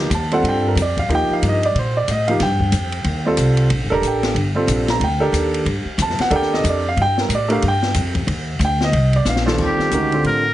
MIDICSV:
0, 0, Header, 1, 6, 480
1, 0, Start_track
1, 0, Tempo, 326975
1, 640, Time_signature, 4, 2, 24, 8
1, 15468, End_track
2, 0, Start_track
2, 0, Title_t, "Grand piano"
2, 0, Program_c, 0, 0
2, 211, Note_on_c, 0, 81, 74
2, 462, Note_on_c, 0, 55, 73
2, 471, Note_on_c, 0, 60, 70
2, 472, Note_off_c, 0, 81, 0
2, 479, Note_on_c, 0, 65, 66
2, 489, Note_on_c, 0, 69, 76
2, 497, Note_on_c, 0, 78, 88
2, 656, Note_off_c, 0, 78, 0
2, 714, Note_on_c, 0, 79, 79
2, 964, Note_off_c, 0, 79, 0
2, 1000, Note_on_c, 0, 70, 67
2, 1087, Note_off_c, 0, 55, 0
2, 1091, Note_off_c, 0, 60, 0
2, 1095, Note_off_c, 0, 65, 0
2, 1100, Note_off_c, 0, 69, 0
2, 1148, Note_off_c, 0, 70, 0
2, 1202, Note_on_c, 0, 74, 78
2, 1448, Note_off_c, 0, 74, 0
2, 1457, Note_on_c, 0, 77, 84
2, 1607, Note_on_c, 0, 53, 68
2, 1612, Note_on_c, 0, 58, 68
2, 1617, Note_off_c, 0, 77, 0
2, 1623, Note_on_c, 0, 63, 67
2, 1629, Note_on_c, 0, 67, 77
2, 1686, Note_on_c, 0, 79, 101
2, 1930, Note_off_c, 0, 79, 0
2, 1954, Note_on_c, 0, 77, 88
2, 2105, Note_off_c, 0, 77, 0
2, 2179, Note_on_c, 0, 75, 78
2, 2319, Note_off_c, 0, 53, 0
2, 2322, Note_off_c, 0, 58, 0
2, 2327, Note_off_c, 0, 63, 0
2, 2330, Note_off_c, 0, 67, 0
2, 2417, Note_off_c, 0, 75, 0
2, 2428, Note_on_c, 0, 74, 85
2, 2582, Note_off_c, 0, 74, 0
2, 2626, Note_on_c, 0, 72, 69
2, 2880, Note_off_c, 0, 72, 0
2, 2890, Note_on_c, 0, 74, 80
2, 3053, Note_off_c, 0, 74, 0
2, 3100, Note_on_c, 0, 75, 84
2, 3342, Note_on_c, 0, 77, 97
2, 3356, Note_off_c, 0, 75, 0
2, 3358, Note_on_c, 0, 53, 63
2, 3371, Note_on_c, 0, 58, 60
2, 3371, Note_on_c, 0, 63, 55
2, 3381, Note_on_c, 0, 67, 70
2, 3513, Note_off_c, 0, 53, 0
2, 3519, Note_off_c, 0, 77, 0
2, 3520, Note_off_c, 0, 58, 0
2, 3520, Note_off_c, 0, 63, 0
2, 3525, Note_off_c, 0, 67, 0
2, 3563, Note_on_c, 0, 79, 87
2, 4780, Note_on_c, 0, 55, 72
2, 4789, Note_on_c, 0, 60, 65
2, 4795, Note_on_c, 0, 65, 66
2, 4807, Note_on_c, 0, 69, 77
2, 4923, Note_off_c, 0, 79, 0
2, 5405, Note_off_c, 0, 55, 0
2, 5410, Note_off_c, 0, 60, 0
2, 5413, Note_off_c, 0, 65, 0
2, 5419, Note_off_c, 0, 69, 0
2, 5727, Note_on_c, 0, 69, 84
2, 5744, Note_on_c, 0, 62, 70
2, 5753, Note_on_c, 0, 70, 95
2, 5758, Note_on_c, 0, 67, 74
2, 5768, Note_on_c, 0, 82, 84
2, 5931, Note_off_c, 0, 82, 0
2, 5983, Note_on_c, 0, 79, 66
2, 6359, Note_off_c, 0, 69, 0
2, 6367, Note_off_c, 0, 62, 0
2, 6372, Note_off_c, 0, 70, 0
2, 6374, Note_off_c, 0, 67, 0
2, 6400, Note_off_c, 0, 79, 0
2, 6679, Note_on_c, 0, 55, 67
2, 6693, Note_on_c, 0, 60, 68
2, 6693, Note_on_c, 0, 65, 62
2, 6704, Note_on_c, 0, 69, 72
2, 7193, Note_on_c, 0, 82, 96
2, 7315, Note_off_c, 0, 55, 0
2, 7321, Note_off_c, 0, 60, 0
2, 7322, Note_off_c, 0, 65, 0
2, 7327, Note_off_c, 0, 69, 0
2, 7363, Note_off_c, 0, 82, 0
2, 7398, Note_on_c, 0, 79, 77
2, 7636, Note_on_c, 0, 69, 81
2, 7643, Note_on_c, 0, 62, 69
2, 7652, Note_on_c, 0, 67, 73
2, 7656, Note_on_c, 0, 70, 82
2, 7826, Note_off_c, 0, 79, 0
2, 8273, Note_off_c, 0, 69, 0
2, 8276, Note_off_c, 0, 62, 0
2, 8281, Note_off_c, 0, 67, 0
2, 8283, Note_off_c, 0, 70, 0
2, 8838, Note_on_c, 0, 81, 90
2, 9104, Note_off_c, 0, 81, 0
2, 9119, Note_on_c, 0, 78, 91
2, 9256, Note_on_c, 0, 69, 80
2, 9266, Note_on_c, 0, 62, 73
2, 9273, Note_on_c, 0, 67, 75
2, 9280, Note_on_c, 0, 70, 82
2, 9286, Note_off_c, 0, 78, 0
2, 9332, Note_on_c, 0, 79, 92
2, 9591, Note_off_c, 0, 79, 0
2, 9595, Note_on_c, 0, 75, 90
2, 9764, Note_off_c, 0, 75, 0
2, 9824, Note_on_c, 0, 74, 81
2, 9982, Note_off_c, 0, 69, 0
2, 9987, Note_off_c, 0, 62, 0
2, 9991, Note_off_c, 0, 67, 0
2, 9994, Note_off_c, 0, 70, 0
2, 10077, Note_off_c, 0, 74, 0
2, 10108, Note_on_c, 0, 77, 94
2, 10261, Note_off_c, 0, 77, 0
2, 10300, Note_on_c, 0, 79, 102
2, 10555, Note_off_c, 0, 79, 0
2, 10582, Note_on_c, 0, 70, 64
2, 10738, Note_off_c, 0, 70, 0
2, 10786, Note_on_c, 0, 74, 86
2, 10984, Note_on_c, 0, 57, 74
2, 10996, Note_on_c, 0, 62, 76
2, 11006, Note_on_c, 0, 67, 73
2, 11015, Note_on_c, 0, 70, 78
2, 11038, Note_off_c, 0, 74, 0
2, 11047, Note_on_c, 0, 77, 92
2, 11165, Note_off_c, 0, 57, 0
2, 11171, Note_off_c, 0, 62, 0
2, 11176, Note_off_c, 0, 67, 0
2, 11180, Note_off_c, 0, 70, 0
2, 11210, Note_off_c, 0, 77, 0
2, 11276, Note_on_c, 0, 79, 92
2, 11686, Note_off_c, 0, 79, 0
2, 12692, Note_on_c, 0, 79, 86
2, 12951, Note_off_c, 0, 79, 0
2, 12976, Note_on_c, 0, 75, 88
2, 13402, Note_off_c, 0, 75, 0
2, 13447, Note_on_c, 0, 74, 80
2, 13610, Note_off_c, 0, 74, 0
2, 13643, Note_on_c, 0, 77, 94
2, 13806, Note_off_c, 0, 77, 0
2, 13884, Note_on_c, 0, 55, 68
2, 13887, Note_on_c, 0, 39, 79
2, 13889, Note_on_c, 0, 60, 69
2, 13898, Note_on_c, 0, 65, 72
2, 13912, Note_on_c, 0, 69, 78
2, 14517, Note_off_c, 0, 55, 0
2, 14519, Note_off_c, 0, 39, 0
2, 14520, Note_off_c, 0, 60, 0
2, 14524, Note_off_c, 0, 65, 0
2, 14531, Note_off_c, 0, 69, 0
2, 14558, Note_on_c, 0, 51, 58
2, 14569, Note_on_c, 0, 56, 53
2, 14578, Note_on_c, 0, 61, 58
2, 14588, Note_on_c, 0, 66, 56
2, 14594, Note_on_c, 0, 70, 67
2, 14824, Note_off_c, 0, 51, 0
2, 14829, Note_off_c, 0, 56, 0
2, 14833, Note_off_c, 0, 61, 0
2, 14839, Note_off_c, 0, 66, 0
2, 14842, Note_off_c, 0, 70, 0
2, 14861, Note_on_c, 0, 50, 52
2, 14865, Note_on_c, 0, 55, 46
2, 14876, Note_on_c, 0, 60, 52
2, 14885, Note_on_c, 0, 65, 50
2, 14890, Note_on_c, 0, 69, 58
2, 15279, Note_off_c, 0, 50, 0
2, 15281, Note_off_c, 0, 55, 0
2, 15286, Note_off_c, 0, 60, 0
2, 15291, Note_off_c, 0, 65, 0
2, 15294, Note_off_c, 0, 69, 0
2, 15468, End_track
3, 0, Start_track
3, 0, Title_t, "Muted trumpet"
3, 0, Program_c, 1, 59
3, 14154, Note_on_c, 1, 67, 73
3, 15019, Note_off_c, 1, 67, 0
3, 15071, Note_on_c, 1, 70, 88
3, 15468, Note_off_c, 1, 70, 0
3, 15468, End_track
4, 0, Start_track
4, 0, Title_t, "Upright bass"
4, 0, Program_c, 2, 32
4, 145, Note_on_c, 2, 39, 95
4, 618, Note_off_c, 2, 39, 0
4, 626, Note_on_c, 2, 43, 83
4, 1096, Note_off_c, 2, 43, 0
4, 1104, Note_on_c, 2, 41, 87
4, 1578, Note_off_c, 2, 41, 0
4, 1593, Note_on_c, 2, 39, 91
4, 1871, Note_off_c, 2, 39, 0
4, 2085, Note_on_c, 2, 43, 91
4, 2548, Note_off_c, 2, 43, 0
4, 2565, Note_on_c, 2, 46, 87
4, 3028, Note_off_c, 2, 46, 0
4, 3048, Note_on_c, 2, 45, 85
4, 3510, Note_off_c, 2, 45, 0
4, 3520, Note_on_c, 2, 43, 92
4, 3986, Note_off_c, 2, 43, 0
4, 3992, Note_on_c, 2, 41, 87
4, 4458, Note_off_c, 2, 41, 0
4, 4467, Note_on_c, 2, 39, 88
4, 4939, Note_off_c, 2, 39, 0
4, 4953, Note_on_c, 2, 36, 83
4, 5422, Note_off_c, 2, 36, 0
4, 5434, Note_on_c, 2, 34, 82
4, 5596, Note_off_c, 2, 34, 0
4, 5596, Note_on_c, 2, 31, 55
4, 5736, Note_off_c, 2, 31, 0
4, 5745, Note_on_c, 2, 27, 64
4, 5889, Note_off_c, 2, 27, 0
4, 5898, Note_on_c, 2, 33, 86
4, 6368, Note_off_c, 2, 33, 0
4, 6377, Note_on_c, 2, 31, 84
4, 6850, Note_off_c, 2, 31, 0
4, 6859, Note_on_c, 2, 34, 90
4, 7325, Note_off_c, 2, 34, 0
4, 7334, Note_on_c, 2, 38, 83
4, 7804, Note_off_c, 2, 38, 0
4, 7813, Note_on_c, 2, 39, 90
4, 8291, Note_off_c, 2, 39, 0
4, 8298, Note_on_c, 2, 43, 80
4, 8577, Note_off_c, 2, 43, 0
4, 8775, Note_on_c, 2, 41, 92
4, 9060, Note_off_c, 2, 41, 0
4, 9252, Note_on_c, 2, 39, 90
4, 9730, Note_off_c, 2, 39, 0
4, 9742, Note_on_c, 2, 41, 99
4, 10215, Note_off_c, 2, 41, 0
4, 10223, Note_on_c, 2, 43, 85
4, 10688, Note_off_c, 2, 43, 0
4, 10697, Note_on_c, 2, 45, 92
4, 11172, Note_off_c, 2, 45, 0
4, 11192, Note_on_c, 2, 43, 90
4, 11652, Note_off_c, 2, 43, 0
4, 11661, Note_on_c, 2, 41, 100
4, 12134, Note_off_c, 2, 41, 0
4, 12140, Note_on_c, 2, 39, 86
4, 12604, Note_off_c, 2, 39, 0
4, 12612, Note_on_c, 2, 38, 102
4, 13087, Note_off_c, 2, 38, 0
4, 13096, Note_on_c, 2, 36, 95
4, 13572, Note_off_c, 2, 36, 0
4, 13581, Note_on_c, 2, 34, 94
4, 14055, Note_off_c, 2, 34, 0
4, 14072, Note_on_c, 2, 39, 79
4, 14349, Note_off_c, 2, 39, 0
4, 14547, Note_on_c, 2, 38, 76
4, 15019, Note_off_c, 2, 38, 0
4, 15029, Note_on_c, 2, 45, 74
4, 15468, Note_off_c, 2, 45, 0
4, 15468, End_track
5, 0, Start_track
5, 0, Title_t, "Muted upright bass strokes"
5, 1893, Note_on_c, 9, 29, 41
5, 2040, Note_off_c, 9, 29, 0
5, 8586, Note_on_c, 9, 29, 41
5, 8733, Note_off_c, 9, 29, 0
5, 9077, Note_on_c, 9, 29, 40
5, 9224, Note_off_c, 9, 29, 0
5, 14355, Note_on_c, 9, 29, 34
5, 14502, Note_off_c, 9, 29, 0
5, 15468, End_track
6, 0, Start_track
6, 0, Title_t, "Drums"
6, 161, Note_on_c, 9, 44, 57
6, 161, Note_on_c, 9, 51, 73
6, 308, Note_off_c, 9, 44, 0
6, 308, Note_off_c, 9, 51, 0
6, 463, Note_on_c, 9, 51, 49
6, 610, Note_off_c, 9, 51, 0
6, 656, Note_on_c, 9, 51, 67
6, 803, Note_off_c, 9, 51, 0
6, 1134, Note_on_c, 9, 44, 63
6, 1134, Note_on_c, 9, 51, 77
6, 1281, Note_off_c, 9, 44, 0
6, 1281, Note_off_c, 9, 51, 0
6, 1420, Note_on_c, 9, 36, 55
6, 1431, Note_on_c, 9, 51, 51
6, 1567, Note_off_c, 9, 36, 0
6, 1578, Note_off_c, 9, 51, 0
6, 1619, Note_on_c, 9, 51, 65
6, 1766, Note_off_c, 9, 51, 0
6, 2094, Note_on_c, 9, 44, 53
6, 2094, Note_on_c, 9, 51, 73
6, 2241, Note_off_c, 9, 44, 0
6, 2241, Note_off_c, 9, 51, 0
6, 2395, Note_on_c, 9, 51, 50
6, 2542, Note_off_c, 9, 51, 0
6, 2578, Note_on_c, 9, 51, 57
6, 2725, Note_off_c, 9, 51, 0
6, 3052, Note_on_c, 9, 44, 62
6, 3052, Note_on_c, 9, 51, 75
6, 3199, Note_off_c, 9, 44, 0
6, 3199, Note_off_c, 9, 51, 0
6, 3345, Note_on_c, 9, 51, 49
6, 3492, Note_off_c, 9, 51, 0
6, 3519, Note_on_c, 9, 38, 39
6, 3520, Note_on_c, 9, 51, 72
6, 3666, Note_off_c, 9, 38, 0
6, 3667, Note_off_c, 9, 51, 0
6, 3813, Note_on_c, 9, 36, 58
6, 3959, Note_off_c, 9, 36, 0
6, 3994, Note_on_c, 9, 44, 50
6, 3994, Note_on_c, 9, 51, 68
6, 4140, Note_off_c, 9, 44, 0
6, 4140, Note_off_c, 9, 51, 0
6, 4290, Note_on_c, 9, 51, 52
6, 4437, Note_off_c, 9, 51, 0
6, 4468, Note_on_c, 9, 51, 64
6, 4615, Note_off_c, 9, 51, 0
6, 4947, Note_on_c, 9, 44, 61
6, 4947, Note_on_c, 9, 51, 76
6, 5094, Note_off_c, 9, 44, 0
6, 5094, Note_off_c, 9, 51, 0
6, 5242, Note_on_c, 9, 51, 54
6, 5389, Note_off_c, 9, 51, 0
6, 5432, Note_on_c, 9, 51, 77
6, 5578, Note_off_c, 9, 51, 0
6, 5917, Note_on_c, 9, 44, 67
6, 5917, Note_on_c, 9, 51, 61
6, 6064, Note_off_c, 9, 44, 0
6, 6064, Note_off_c, 9, 51, 0
6, 6209, Note_on_c, 9, 38, 62
6, 6211, Note_on_c, 9, 51, 52
6, 6356, Note_off_c, 9, 38, 0
6, 6357, Note_off_c, 9, 51, 0
6, 6399, Note_on_c, 9, 51, 61
6, 6546, Note_off_c, 9, 51, 0
6, 6871, Note_on_c, 9, 44, 66
6, 6871, Note_on_c, 9, 51, 80
6, 7018, Note_off_c, 9, 44, 0
6, 7018, Note_off_c, 9, 51, 0
6, 7165, Note_on_c, 9, 38, 62
6, 7167, Note_on_c, 9, 51, 54
6, 7312, Note_off_c, 9, 38, 0
6, 7314, Note_off_c, 9, 51, 0
6, 7354, Note_on_c, 9, 51, 65
6, 7500, Note_off_c, 9, 51, 0
6, 7835, Note_on_c, 9, 44, 61
6, 7835, Note_on_c, 9, 51, 74
6, 7982, Note_off_c, 9, 44, 0
6, 7982, Note_off_c, 9, 51, 0
6, 8135, Note_on_c, 9, 51, 53
6, 8282, Note_off_c, 9, 51, 0
6, 8311, Note_on_c, 9, 51, 58
6, 8458, Note_off_c, 9, 51, 0
6, 8786, Note_on_c, 9, 44, 65
6, 8786, Note_on_c, 9, 51, 83
6, 8933, Note_off_c, 9, 44, 0
6, 8933, Note_off_c, 9, 51, 0
6, 8953, Note_on_c, 9, 38, 28
6, 9081, Note_on_c, 9, 51, 52
6, 9100, Note_off_c, 9, 38, 0
6, 9102, Note_on_c, 9, 38, 51
6, 9228, Note_off_c, 9, 51, 0
6, 9248, Note_off_c, 9, 38, 0
6, 9262, Note_on_c, 9, 51, 68
6, 9409, Note_off_c, 9, 51, 0
6, 9424, Note_on_c, 9, 38, 28
6, 9571, Note_off_c, 9, 38, 0
6, 9595, Note_on_c, 9, 38, 48
6, 9742, Note_off_c, 9, 38, 0
6, 9756, Note_on_c, 9, 44, 65
6, 9756, Note_on_c, 9, 51, 81
6, 9903, Note_off_c, 9, 44, 0
6, 9903, Note_off_c, 9, 51, 0
6, 10236, Note_on_c, 9, 51, 60
6, 10383, Note_off_c, 9, 51, 0
6, 10533, Note_on_c, 9, 38, 46
6, 10679, Note_off_c, 9, 38, 0
6, 10713, Note_on_c, 9, 44, 61
6, 10713, Note_on_c, 9, 51, 78
6, 10860, Note_off_c, 9, 44, 0
6, 10860, Note_off_c, 9, 51, 0
6, 11007, Note_on_c, 9, 51, 54
6, 11154, Note_off_c, 9, 51, 0
6, 11191, Note_on_c, 9, 51, 76
6, 11337, Note_off_c, 9, 51, 0
6, 11485, Note_on_c, 9, 38, 52
6, 11632, Note_off_c, 9, 38, 0
6, 11662, Note_on_c, 9, 44, 62
6, 11662, Note_on_c, 9, 51, 81
6, 11808, Note_off_c, 9, 44, 0
6, 11808, Note_off_c, 9, 51, 0
6, 11962, Note_on_c, 9, 36, 69
6, 11962, Note_on_c, 9, 51, 49
6, 12109, Note_off_c, 9, 36, 0
6, 12109, Note_off_c, 9, 51, 0
6, 12151, Note_on_c, 9, 51, 66
6, 12297, Note_off_c, 9, 51, 0
6, 12634, Note_on_c, 9, 44, 52
6, 12634, Note_on_c, 9, 51, 76
6, 12781, Note_off_c, 9, 44, 0
6, 12781, Note_off_c, 9, 51, 0
6, 12927, Note_on_c, 9, 38, 56
6, 13074, Note_off_c, 9, 38, 0
6, 13111, Note_on_c, 9, 51, 67
6, 13258, Note_off_c, 9, 51, 0
6, 13403, Note_on_c, 9, 51, 49
6, 13550, Note_off_c, 9, 51, 0
6, 13585, Note_on_c, 9, 38, 53
6, 13586, Note_on_c, 9, 44, 59
6, 13732, Note_off_c, 9, 38, 0
6, 13733, Note_off_c, 9, 44, 0
6, 13742, Note_on_c, 9, 38, 66
6, 13888, Note_off_c, 9, 38, 0
6, 13909, Note_on_c, 9, 38, 94
6, 14056, Note_off_c, 9, 38, 0
6, 14067, Note_on_c, 9, 49, 65
6, 14073, Note_on_c, 9, 36, 57
6, 14214, Note_off_c, 9, 49, 0
6, 14220, Note_off_c, 9, 36, 0
6, 14377, Note_on_c, 9, 38, 34
6, 14524, Note_off_c, 9, 38, 0
6, 14555, Note_on_c, 9, 44, 57
6, 14555, Note_on_c, 9, 51, 60
6, 14702, Note_off_c, 9, 44, 0
6, 14702, Note_off_c, 9, 51, 0
6, 14858, Note_on_c, 9, 51, 44
6, 15005, Note_off_c, 9, 51, 0
6, 15039, Note_on_c, 9, 51, 55
6, 15186, Note_off_c, 9, 51, 0
6, 15468, End_track
0, 0, End_of_file